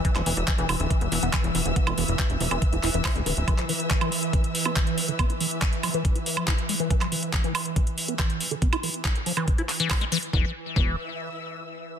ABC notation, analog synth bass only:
X:1
M:4/4
L:1/16
Q:1/4=140
K:none
V:1 name="Analog synth bass" clef=bass
z E,,, E,,, E,,, z E,,, E,,, D,,, z E,,, E,,, E,,, z E,,, E,,, E,,, | z E,,, E,,, E,,, z E,,, E,,, E,,, z E,,, E,,, E,,, z D,,, D,,, D,,, | z16 | z16 |
z16 | z16 | E,,, z3 E,,,2 z8 z2 |]